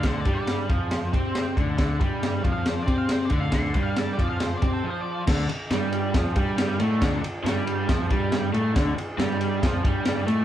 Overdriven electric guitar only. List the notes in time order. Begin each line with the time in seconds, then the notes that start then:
0.04 D3
0.26 G3
0.69 F3
1.12 C4
1.57 D3
1.78 D3
1.99 G3
2.43 F3
2.86 C4
3.30 D3
3.54 D3
3.75 G3
4.18 F3
4.62 C4
4.84 F3
5.27 D3
5.49 muted overdriven electric guitar stroke
5.72 G3
6.15 F3
6.36 G3
6.80 A3
7.01 D3
7.23 muted overdriven electric guitar stroke
7.44 G3
7.88 F3
8.10 G3
8.53 A3
8.74 D3
8.96 muted overdriven electric guitar stroke
9.18 G3
9.62 F3
9.83 G3
10.26 A3